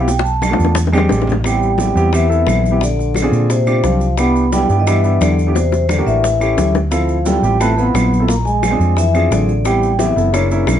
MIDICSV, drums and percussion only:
0, 0, Header, 1, 2, 480
1, 0, Start_track
1, 0, Key_signature, 0, "minor"
1, 0, Tempo, 341686
1, 115, Time_signature, 4, 2, 24, 8
1, 15166, End_track
2, 0, Start_track
2, 0, Title_t, "Drums"
2, 109, Note_on_c, 9, 60, 84
2, 117, Note_on_c, 9, 63, 35
2, 118, Note_on_c, 9, 70, 67
2, 250, Note_off_c, 9, 60, 0
2, 257, Note_off_c, 9, 63, 0
2, 258, Note_off_c, 9, 70, 0
2, 272, Note_on_c, 9, 60, 98
2, 359, Note_on_c, 9, 70, 29
2, 360, Note_on_c, 9, 63, 36
2, 412, Note_off_c, 9, 60, 0
2, 500, Note_off_c, 9, 63, 0
2, 500, Note_off_c, 9, 70, 0
2, 587, Note_on_c, 9, 61, 77
2, 594, Note_on_c, 9, 63, 89
2, 601, Note_on_c, 9, 75, 65
2, 603, Note_on_c, 9, 70, 79
2, 728, Note_off_c, 9, 61, 0
2, 735, Note_off_c, 9, 63, 0
2, 742, Note_off_c, 9, 75, 0
2, 744, Note_off_c, 9, 70, 0
2, 750, Note_on_c, 9, 61, 102
2, 841, Note_on_c, 9, 70, 30
2, 843, Note_on_c, 9, 63, 35
2, 890, Note_off_c, 9, 61, 0
2, 908, Note_on_c, 9, 61, 83
2, 982, Note_off_c, 9, 70, 0
2, 983, Note_off_c, 9, 63, 0
2, 1049, Note_off_c, 9, 61, 0
2, 1053, Note_on_c, 9, 61, 112
2, 1073, Note_on_c, 9, 70, 81
2, 1080, Note_on_c, 9, 63, 34
2, 1194, Note_off_c, 9, 61, 0
2, 1214, Note_off_c, 9, 70, 0
2, 1221, Note_off_c, 9, 63, 0
2, 1224, Note_on_c, 9, 61, 83
2, 1311, Note_on_c, 9, 63, 95
2, 1313, Note_on_c, 9, 75, 69
2, 1330, Note_on_c, 9, 70, 29
2, 1364, Note_off_c, 9, 61, 0
2, 1372, Note_on_c, 9, 61, 102
2, 1451, Note_off_c, 9, 63, 0
2, 1453, Note_off_c, 9, 75, 0
2, 1470, Note_off_c, 9, 70, 0
2, 1513, Note_off_c, 9, 61, 0
2, 1535, Note_on_c, 9, 61, 96
2, 1552, Note_on_c, 9, 63, 76
2, 1573, Note_on_c, 9, 70, 65
2, 1676, Note_off_c, 9, 61, 0
2, 1692, Note_off_c, 9, 63, 0
2, 1709, Note_on_c, 9, 61, 77
2, 1713, Note_off_c, 9, 70, 0
2, 1789, Note_on_c, 9, 64, 89
2, 1815, Note_on_c, 9, 70, 31
2, 1849, Note_off_c, 9, 61, 0
2, 1852, Note_on_c, 9, 61, 92
2, 1930, Note_off_c, 9, 64, 0
2, 1955, Note_off_c, 9, 70, 0
2, 1993, Note_off_c, 9, 61, 0
2, 2026, Note_on_c, 9, 60, 62
2, 2029, Note_on_c, 9, 63, 33
2, 2045, Note_on_c, 9, 75, 60
2, 2052, Note_on_c, 9, 70, 72
2, 2167, Note_off_c, 9, 60, 0
2, 2169, Note_off_c, 9, 63, 0
2, 2186, Note_off_c, 9, 75, 0
2, 2193, Note_off_c, 9, 70, 0
2, 2261, Note_on_c, 9, 63, 32
2, 2284, Note_on_c, 9, 70, 26
2, 2402, Note_off_c, 9, 63, 0
2, 2425, Note_off_c, 9, 70, 0
2, 2498, Note_on_c, 9, 63, 83
2, 2507, Note_on_c, 9, 60, 52
2, 2524, Note_on_c, 9, 70, 70
2, 2639, Note_off_c, 9, 63, 0
2, 2648, Note_off_c, 9, 60, 0
2, 2664, Note_off_c, 9, 70, 0
2, 2751, Note_on_c, 9, 63, 32
2, 2764, Note_on_c, 9, 70, 30
2, 2891, Note_off_c, 9, 63, 0
2, 2905, Note_off_c, 9, 70, 0
2, 2989, Note_on_c, 9, 60, 69
2, 2997, Note_on_c, 9, 63, 34
2, 3006, Note_on_c, 9, 75, 61
2, 3009, Note_on_c, 9, 70, 73
2, 3129, Note_off_c, 9, 60, 0
2, 3138, Note_off_c, 9, 63, 0
2, 3146, Note_off_c, 9, 75, 0
2, 3150, Note_off_c, 9, 70, 0
2, 3234, Note_on_c, 9, 63, 32
2, 3254, Note_on_c, 9, 70, 27
2, 3374, Note_off_c, 9, 63, 0
2, 3395, Note_off_c, 9, 70, 0
2, 3462, Note_on_c, 9, 63, 77
2, 3464, Note_on_c, 9, 60, 67
2, 3464, Note_on_c, 9, 61, 76
2, 3486, Note_on_c, 9, 75, 63
2, 3499, Note_on_c, 9, 70, 58
2, 3602, Note_off_c, 9, 63, 0
2, 3605, Note_off_c, 9, 60, 0
2, 3605, Note_off_c, 9, 61, 0
2, 3627, Note_off_c, 9, 75, 0
2, 3639, Note_off_c, 9, 70, 0
2, 3707, Note_on_c, 9, 63, 68
2, 3734, Note_on_c, 9, 70, 29
2, 3847, Note_off_c, 9, 63, 0
2, 3874, Note_off_c, 9, 70, 0
2, 3946, Note_on_c, 9, 63, 33
2, 3949, Note_on_c, 9, 60, 70
2, 3978, Note_on_c, 9, 70, 66
2, 4087, Note_off_c, 9, 63, 0
2, 4089, Note_off_c, 9, 60, 0
2, 4119, Note_off_c, 9, 70, 0
2, 4180, Note_on_c, 9, 63, 32
2, 4203, Note_on_c, 9, 60, 34
2, 4219, Note_on_c, 9, 70, 28
2, 4320, Note_off_c, 9, 63, 0
2, 4343, Note_off_c, 9, 60, 0
2, 4360, Note_off_c, 9, 70, 0
2, 4417, Note_on_c, 9, 63, 84
2, 4433, Note_on_c, 9, 60, 60
2, 4436, Note_on_c, 9, 75, 58
2, 4446, Note_on_c, 9, 70, 74
2, 4558, Note_off_c, 9, 63, 0
2, 4573, Note_off_c, 9, 60, 0
2, 4576, Note_off_c, 9, 75, 0
2, 4586, Note_off_c, 9, 70, 0
2, 4663, Note_on_c, 9, 63, 32
2, 4678, Note_on_c, 9, 70, 29
2, 4803, Note_off_c, 9, 63, 0
2, 4818, Note_off_c, 9, 70, 0
2, 4905, Note_on_c, 9, 63, 34
2, 4914, Note_on_c, 9, 60, 67
2, 4921, Note_on_c, 9, 70, 75
2, 5045, Note_off_c, 9, 63, 0
2, 5055, Note_off_c, 9, 60, 0
2, 5062, Note_off_c, 9, 70, 0
2, 5146, Note_on_c, 9, 63, 31
2, 5150, Note_on_c, 9, 60, 33
2, 5152, Note_on_c, 9, 70, 28
2, 5159, Note_on_c, 9, 75, 65
2, 5286, Note_off_c, 9, 63, 0
2, 5291, Note_off_c, 9, 60, 0
2, 5292, Note_off_c, 9, 70, 0
2, 5299, Note_off_c, 9, 75, 0
2, 5390, Note_on_c, 9, 60, 68
2, 5390, Note_on_c, 9, 61, 80
2, 5391, Note_on_c, 9, 63, 75
2, 5397, Note_on_c, 9, 70, 66
2, 5530, Note_off_c, 9, 60, 0
2, 5530, Note_off_c, 9, 61, 0
2, 5531, Note_off_c, 9, 63, 0
2, 5537, Note_off_c, 9, 70, 0
2, 5621, Note_on_c, 9, 60, 30
2, 5630, Note_on_c, 9, 70, 30
2, 5762, Note_off_c, 9, 60, 0
2, 5771, Note_off_c, 9, 70, 0
2, 5865, Note_on_c, 9, 60, 67
2, 5866, Note_on_c, 9, 63, 34
2, 5870, Note_on_c, 9, 70, 70
2, 5882, Note_on_c, 9, 75, 57
2, 6005, Note_off_c, 9, 60, 0
2, 6007, Note_off_c, 9, 63, 0
2, 6011, Note_off_c, 9, 70, 0
2, 6023, Note_off_c, 9, 75, 0
2, 6112, Note_on_c, 9, 63, 32
2, 6122, Note_on_c, 9, 70, 27
2, 6253, Note_off_c, 9, 63, 0
2, 6263, Note_off_c, 9, 70, 0
2, 6357, Note_on_c, 9, 60, 57
2, 6357, Note_on_c, 9, 63, 85
2, 6357, Note_on_c, 9, 70, 70
2, 6497, Note_off_c, 9, 63, 0
2, 6497, Note_off_c, 9, 70, 0
2, 6498, Note_off_c, 9, 60, 0
2, 6595, Note_on_c, 9, 70, 29
2, 6610, Note_on_c, 9, 63, 34
2, 6736, Note_off_c, 9, 70, 0
2, 6750, Note_off_c, 9, 63, 0
2, 6840, Note_on_c, 9, 70, 65
2, 6846, Note_on_c, 9, 63, 32
2, 6846, Note_on_c, 9, 75, 60
2, 6847, Note_on_c, 9, 60, 70
2, 6980, Note_off_c, 9, 70, 0
2, 6986, Note_off_c, 9, 63, 0
2, 6986, Note_off_c, 9, 75, 0
2, 6987, Note_off_c, 9, 60, 0
2, 7081, Note_on_c, 9, 70, 30
2, 7083, Note_on_c, 9, 63, 33
2, 7222, Note_off_c, 9, 70, 0
2, 7224, Note_off_c, 9, 63, 0
2, 7318, Note_on_c, 9, 63, 81
2, 7320, Note_on_c, 9, 70, 63
2, 7324, Note_on_c, 9, 75, 62
2, 7329, Note_on_c, 9, 60, 69
2, 7329, Note_on_c, 9, 61, 80
2, 7458, Note_off_c, 9, 63, 0
2, 7460, Note_off_c, 9, 70, 0
2, 7465, Note_off_c, 9, 75, 0
2, 7470, Note_off_c, 9, 60, 0
2, 7470, Note_off_c, 9, 61, 0
2, 7570, Note_on_c, 9, 70, 30
2, 7710, Note_off_c, 9, 70, 0
2, 7806, Note_on_c, 9, 60, 90
2, 7810, Note_on_c, 9, 70, 68
2, 7947, Note_off_c, 9, 60, 0
2, 7950, Note_off_c, 9, 70, 0
2, 8039, Note_on_c, 9, 60, 85
2, 8042, Note_on_c, 9, 63, 34
2, 8054, Note_on_c, 9, 70, 30
2, 8180, Note_off_c, 9, 60, 0
2, 8183, Note_off_c, 9, 63, 0
2, 8194, Note_off_c, 9, 70, 0
2, 8272, Note_on_c, 9, 63, 85
2, 8276, Note_on_c, 9, 75, 64
2, 8278, Note_on_c, 9, 60, 71
2, 8296, Note_on_c, 9, 70, 72
2, 8413, Note_off_c, 9, 63, 0
2, 8417, Note_off_c, 9, 75, 0
2, 8419, Note_off_c, 9, 60, 0
2, 8437, Note_off_c, 9, 70, 0
2, 8524, Note_on_c, 9, 63, 34
2, 8535, Note_on_c, 9, 70, 30
2, 8664, Note_off_c, 9, 63, 0
2, 8675, Note_off_c, 9, 70, 0
2, 8759, Note_on_c, 9, 63, 34
2, 8765, Note_on_c, 9, 61, 99
2, 8775, Note_on_c, 9, 70, 76
2, 8899, Note_off_c, 9, 63, 0
2, 8905, Note_off_c, 9, 61, 0
2, 8915, Note_off_c, 9, 70, 0
2, 9003, Note_on_c, 9, 63, 31
2, 9008, Note_on_c, 9, 70, 28
2, 9010, Note_on_c, 9, 75, 65
2, 9144, Note_off_c, 9, 63, 0
2, 9149, Note_off_c, 9, 70, 0
2, 9150, Note_off_c, 9, 75, 0
2, 9234, Note_on_c, 9, 63, 84
2, 9241, Note_on_c, 9, 61, 89
2, 9246, Note_on_c, 9, 70, 62
2, 9375, Note_off_c, 9, 63, 0
2, 9381, Note_off_c, 9, 61, 0
2, 9386, Note_off_c, 9, 70, 0
2, 9482, Note_on_c, 9, 61, 99
2, 9483, Note_on_c, 9, 70, 30
2, 9622, Note_off_c, 9, 61, 0
2, 9624, Note_off_c, 9, 70, 0
2, 9715, Note_on_c, 9, 70, 69
2, 9716, Note_on_c, 9, 60, 65
2, 9722, Note_on_c, 9, 75, 57
2, 9856, Note_off_c, 9, 70, 0
2, 9857, Note_off_c, 9, 60, 0
2, 9863, Note_off_c, 9, 75, 0
2, 9955, Note_on_c, 9, 70, 28
2, 9974, Note_on_c, 9, 63, 32
2, 10096, Note_off_c, 9, 70, 0
2, 10115, Note_off_c, 9, 63, 0
2, 10193, Note_on_c, 9, 70, 67
2, 10203, Note_on_c, 9, 60, 60
2, 10204, Note_on_c, 9, 63, 87
2, 10334, Note_off_c, 9, 70, 0
2, 10344, Note_off_c, 9, 60, 0
2, 10345, Note_off_c, 9, 63, 0
2, 10445, Note_on_c, 9, 70, 29
2, 10456, Note_on_c, 9, 63, 33
2, 10586, Note_off_c, 9, 70, 0
2, 10596, Note_off_c, 9, 63, 0
2, 10684, Note_on_c, 9, 75, 59
2, 10689, Note_on_c, 9, 70, 67
2, 10690, Note_on_c, 9, 60, 68
2, 10693, Note_on_c, 9, 63, 36
2, 10824, Note_off_c, 9, 75, 0
2, 10829, Note_off_c, 9, 70, 0
2, 10830, Note_off_c, 9, 60, 0
2, 10834, Note_off_c, 9, 63, 0
2, 10923, Note_on_c, 9, 63, 30
2, 10933, Note_on_c, 9, 70, 28
2, 11063, Note_off_c, 9, 63, 0
2, 11073, Note_off_c, 9, 70, 0
2, 11158, Note_on_c, 9, 63, 82
2, 11166, Note_on_c, 9, 60, 67
2, 11166, Note_on_c, 9, 61, 82
2, 11171, Note_on_c, 9, 75, 66
2, 11177, Note_on_c, 9, 70, 62
2, 11298, Note_off_c, 9, 63, 0
2, 11307, Note_off_c, 9, 60, 0
2, 11307, Note_off_c, 9, 61, 0
2, 11311, Note_off_c, 9, 75, 0
2, 11317, Note_off_c, 9, 70, 0
2, 11406, Note_on_c, 9, 63, 72
2, 11427, Note_on_c, 9, 70, 29
2, 11546, Note_off_c, 9, 63, 0
2, 11568, Note_off_c, 9, 70, 0
2, 11638, Note_on_c, 9, 60, 67
2, 11653, Note_on_c, 9, 63, 34
2, 11656, Note_on_c, 9, 70, 67
2, 11779, Note_off_c, 9, 60, 0
2, 11793, Note_off_c, 9, 63, 0
2, 11796, Note_off_c, 9, 70, 0
2, 11874, Note_on_c, 9, 60, 34
2, 11898, Note_on_c, 9, 63, 34
2, 11900, Note_on_c, 9, 70, 29
2, 12015, Note_off_c, 9, 60, 0
2, 12038, Note_off_c, 9, 63, 0
2, 12040, Note_off_c, 9, 70, 0
2, 12121, Note_on_c, 9, 60, 58
2, 12125, Note_on_c, 9, 63, 87
2, 12125, Note_on_c, 9, 75, 66
2, 12131, Note_on_c, 9, 70, 71
2, 12262, Note_off_c, 9, 60, 0
2, 12265, Note_off_c, 9, 63, 0
2, 12265, Note_off_c, 9, 75, 0
2, 12271, Note_off_c, 9, 70, 0
2, 12366, Note_on_c, 9, 63, 35
2, 12372, Note_on_c, 9, 70, 28
2, 12506, Note_off_c, 9, 63, 0
2, 12512, Note_off_c, 9, 70, 0
2, 12596, Note_on_c, 9, 60, 68
2, 12617, Note_on_c, 9, 70, 70
2, 12737, Note_off_c, 9, 60, 0
2, 12758, Note_off_c, 9, 70, 0
2, 12849, Note_on_c, 9, 60, 34
2, 12850, Note_on_c, 9, 75, 67
2, 12851, Note_on_c, 9, 70, 31
2, 12989, Note_off_c, 9, 60, 0
2, 12991, Note_off_c, 9, 75, 0
2, 12992, Note_off_c, 9, 70, 0
2, 13077, Note_on_c, 9, 63, 72
2, 13089, Note_on_c, 9, 70, 64
2, 13092, Note_on_c, 9, 60, 64
2, 13092, Note_on_c, 9, 61, 86
2, 13218, Note_off_c, 9, 63, 0
2, 13230, Note_off_c, 9, 70, 0
2, 13233, Note_off_c, 9, 60, 0
2, 13233, Note_off_c, 9, 61, 0
2, 13328, Note_on_c, 9, 70, 28
2, 13333, Note_on_c, 9, 60, 35
2, 13468, Note_off_c, 9, 70, 0
2, 13474, Note_off_c, 9, 60, 0
2, 13556, Note_on_c, 9, 70, 65
2, 13559, Note_on_c, 9, 63, 33
2, 13562, Note_on_c, 9, 60, 68
2, 13568, Note_on_c, 9, 75, 57
2, 13696, Note_off_c, 9, 70, 0
2, 13699, Note_off_c, 9, 63, 0
2, 13702, Note_off_c, 9, 60, 0
2, 13708, Note_off_c, 9, 75, 0
2, 13790, Note_on_c, 9, 63, 34
2, 13806, Note_on_c, 9, 70, 25
2, 13931, Note_off_c, 9, 63, 0
2, 13947, Note_off_c, 9, 70, 0
2, 14033, Note_on_c, 9, 63, 84
2, 14040, Note_on_c, 9, 60, 60
2, 14047, Note_on_c, 9, 70, 74
2, 14173, Note_off_c, 9, 63, 0
2, 14180, Note_off_c, 9, 60, 0
2, 14187, Note_off_c, 9, 70, 0
2, 14272, Note_on_c, 9, 63, 31
2, 14298, Note_on_c, 9, 70, 29
2, 14413, Note_off_c, 9, 63, 0
2, 14438, Note_off_c, 9, 70, 0
2, 14523, Note_on_c, 9, 60, 71
2, 14523, Note_on_c, 9, 63, 35
2, 14525, Note_on_c, 9, 70, 67
2, 14526, Note_on_c, 9, 75, 65
2, 14663, Note_off_c, 9, 60, 0
2, 14664, Note_off_c, 9, 63, 0
2, 14665, Note_off_c, 9, 70, 0
2, 14667, Note_off_c, 9, 75, 0
2, 14765, Note_on_c, 9, 70, 28
2, 14768, Note_on_c, 9, 63, 34
2, 14906, Note_off_c, 9, 70, 0
2, 14909, Note_off_c, 9, 63, 0
2, 14991, Note_on_c, 9, 60, 70
2, 14991, Note_on_c, 9, 61, 76
2, 15003, Note_on_c, 9, 75, 70
2, 15007, Note_on_c, 9, 63, 75
2, 15008, Note_on_c, 9, 70, 66
2, 15132, Note_off_c, 9, 60, 0
2, 15132, Note_off_c, 9, 61, 0
2, 15143, Note_off_c, 9, 75, 0
2, 15148, Note_off_c, 9, 63, 0
2, 15149, Note_off_c, 9, 70, 0
2, 15166, End_track
0, 0, End_of_file